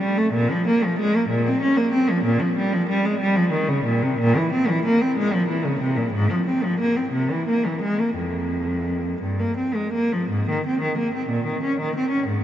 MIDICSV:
0, 0, Header, 1, 2, 480
1, 0, Start_track
1, 0, Tempo, 659341
1, 258, Time_signature, 6, 3, 24, 8
1, 730, Tempo, 632244
1, 2650, Tempo, 654308
1, 5050, Tempo, 665927
1, 5530, Tempo, 708383
1, 7450, Tempo, 657174
1, 9010, End_track
2, 0, Start_track
2, 0, Title_t, "Cello"
2, 0, Program_c, 0, 42
2, 0, Note_on_c, 0, 55, 62
2, 124, Note_off_c, 0, 55, 0
2, 125, Note_on_c, 0, 57, 70
2, 240, Note_on_c, 0, 46, 82
2, 254, Note_off_c, 0, 57, 0
2, 368, Note_off_c, 0, 46, 0
2, 371, Note_on_c, 0, 53, 73
2, 489, Note_on_c, 0, 58, 66
2, 494, Note_off_c, 0, 53, 0
2, 608, Note_off_c, 0, 58, 0
2, 612, Note_on_c, 0, 53, 64
2, 721, Note_on_c, 0, 56, 75
2, 729, Note_off_c, 0, 53, 0
2, 843, Note_off_c, 0, 56, 0
2, 849, Note_on_c, 0, 58, 65
2, 949, Note_on_c, 0, 46, 67
2, 970, Note_off_c, 0, 58, 0
2, 1078, Note_off_c, 0, 46, 0
2, 1079, Note_on_c, 0, 60, 71
2, 1197, Note_on_c, 0, 61, 67
2, 1206, Note_off_c, 0, 60, 0
2, 1310, Note_on_c, 0, 58, 77
2, 1322, Note_off_c, 0, 61, 0
2, 1432, Note_on_c, 0, 60, 76
2, 1440, Note_off_c, 0, 58, 0
2, 1558, Note_off_c, 0, 60, 0
2, 1561, Note_on_c, 0, 53, 69
2, 1668, Note_on_c, 0, 46, 84
2, 1683, Note_off_c, 0, 53, 0
2, 1794, Note_off_c, 0, 46, 0
2, 1796, Note_on_c, 0, 53, 70
2, 1920, Note_off_c, 0, 53, 0
2, 1922, Note_on_c, 0, 55, 65
2, 2040, Note_on_c, 0, 53, 71
2, 2041, Note_off_c, 0, 55, 0
2, 2163, Note_off_c, 0, 53, 0
2, 2163, Note_on_c, 0, 55, 72
2, 2282, Note_off_c, 0, 55, 0
2, 2283, Note_on_c, 0, 56, 67
2, 2400, Note_on_c, 0, 55, 76
2, 2405, Note_off_c, 0, 56, 0
2, 2517, Note_on_c, 0, 53, 74
2, 2522, Note_off_c, 0, 55, 0
2, 2637, Note_on_c, 0, 51, 64
2, 2646, Note_off_c, 0, 53, 0
2, 2760, Note_on_c, 0, 49, 72
2, 2762, Note_off_c, 0, 51, 0
2, 2885, Note_on_c, 0, 46, 67
2, 2889, Note_off_c, 0, 49, 0
2, 3011, Note_off_c, 0, 46, 0
2, 3013, Note_on_c, 0, 48, 66
2, 3136, Note_on_c, 0, 46, 93
2, 3139, Note_off_c, 0, 48, 0
2, 3259, Note_off_c, 0, 46, 0
2, 3261, Note_on_c, 0, 52, 79
2, 3381, Note_on_c, 0, 60, 68
2, 3383, Note_off_c, 0, 52, 0
2, 3498, Note_on_c, 0, 52, 70
2, 3499, Note_off_c, 0, 60, 0
2, 3619, Note_off_c, 0, 52, 0
2, 3619, Note_on_c, 0, 58, 72
2, 3735, Note_off_c, 0, 58, 0
2, 3739, Note_on_c, 0, 60, 70
2, 3857, Note_off_c, 0, 60, 0
2, 3857, Note_on_c, 0, 56, 73
2, 3973, Note_off_c, 0, 56, 0
2, 3976, Note_on_c, 0, 53, 71
2, 4085, Note_on_c, 0, 52, 58
2, 4094, Note_off_c, 0, 53, 0
2, 4204, Note_on_c, 0, 49, 69
2, 4205, Note_off_c, 0, 52, 0
2, 4318, Note_on_c, 0, 48, 72
2, 4326, Note_off_c, 0, 49, 0
2, 4437, Note_on_c, 0, 46, 63
2, 4440, Note_off_c, 0, 48, 0
2, 4554, Note_on_c, 0, 44, 87
2, 4561, Note_off_c, 0, 46, 0
2, 4677, Note_off_c, 0, 44, 0
2, 4684, Note_on_c, 0, 53, 71
2, 4806, Note_off_c, 0, 53, 0
2, 4808, Note_on_c, 0, 60, 62
2, 4926, Note_on_c, 0, 53, 67
2, 4927, Note_off_c, 0, 60, 0
2, 5049, Note_off_c, 0, 53, 0
2, 5049, Note_on_c, 0, 58, 66
2, 5167, Note_off_c, 0, 58, 0
2, 5167, Note_on_c, 0, 60, 62
2, 5280, Note_on_c, 0, 48, 65
2, 5287, Note_off_c, 0, 60, 0
2, 5402, Note_off_c, 0, 48, 0
2, 5413, Note_on_c, 0, 52, 61
2, 5532, Note_off_c, 0, 52, 0
2, 5534, Note_on_c, 0, 58, 61
2, 5646, Note_off_c, 0, 58, 0
2, 5654, Note_on_c, 0, 52, 55
2, 5767, Note_on_c, 0, 56, 65
2, 5769, Note_off_c, 0, 52, 0
2, 5884, Note_off_c, 0, 56, 0
2, 5888, Note_on_c, 0, 58, 57
2, 5999, Note_on_c, 0, 41, 62
2, 6008, Note_off_c, 0, 58, 0
2, 6703, Note_off_c, 0, 41, 0
2, 6714, Note_on_c, 0, 43, 49
2, 6832, Note_on_c, 0, 58, 59
2, 6834, Note_off_c, 0, 43, 0
2, 6953, Note_on_c, 0, 60, 48
2, 6956, Note_off_c, 0, 58, 0
2, 7071, Note_on_c, 0, 56, 53
2, 7076, Note_off_c, 0, 60, 0
2, 7198, Note_on_c, 0, 58, 59
2, 7202, Note_off_c, 0, 56, 0
2, 7324, Note_off_c, 0, 58, 0
2, 7331, Note_on_c, 0, 53, 54
2, 7445, Note_on_c, 0, 44, 66
2, 7450, Note_off_c, 0, 53, 0
2, 7570, Note_off_c, 0, 44, 0
2, 7591, Note_on_c, 0, 51, 58
2, 7703, Note_off_c, 0, 51, 0
2, 7713, Note_on_c, 0, 60, 61
2, 7824, Note_off_c, 0, 60, 0
2, 7825, Note_on_c, 0, 51, 65
2, 7938, Note_off_c, 0, 51, 0
2, 7945, Note_on_c, 0, 58, 54
2, 8058, Note_off_c, 0, 58, 0
2, 8064, Note_on_c, 0, 60, 57
2, 8175, Note_on_c, 0, 46, 65
2, 8177, Note_off_c, 0, 60, 0
2, 8292, Note_off_c, 0, 46, 0
2, 8297, Note_on_c, 0, 51, 55
2, 8413, Note_off_c, 0, 51, 0
2, 8421, Note_on_c, 0, 61, 55
2, 8535, Note_off_c, 0, 61, 0
2, 8542, Note_on_c, 0, 51, 62
2, 8655, Note_off_c, 0, 51, 0
2, 8662, Note_on_c, 0, 60, 64
2, 8770, Note_on_c, 0, 61, 55
2, 8775, Note_off_c, 0, 60, 0
2, 8887, Note_on_c, 0, 44, 60
2, 8888, Note_off_c, 0, 61, 0
2, 9005, Note_off_c, 0, 44, 0
2, 9010, End_track
0, 0, End_of_file